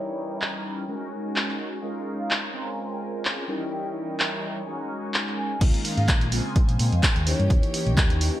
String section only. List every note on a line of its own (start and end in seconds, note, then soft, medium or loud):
0.00 0.88 E3 medium
0.00 0.87 C#5 medium
0.00 0.88 D#5 medium
0.00 0.88 G5 medium
0.89 1.82 F#4 medium
0.89 3.46 A#4 medium
0.89 2.52 C#5 medium
0.89 1.82 G#5 medium
1.83 2.53 D#4 medium
1.83 2.53 F5 medium
2.54 3.48 C5 medium
2.54 3.48 G#5 medium
3.49 4.66 E3 medium
3.49 5.59 C#5 medium
3.49 4.66 D#5 medium
3.49 4.66 G5 medium
4.67 5.60 F#4 medium
4.67 5.60 A#4 medium
4.67 5.60 G#5 medium
5.61 6.31 D#4 medium
5.61 6.31 A#4 medium
5.61 6.31 F5 medium
6.32 7.26 C5 medium
6.32 7.26 G#5 medium
7.27 8.40 E3 medium
7.27 8.40 C#5 medium
7.27 8.40 G5 medium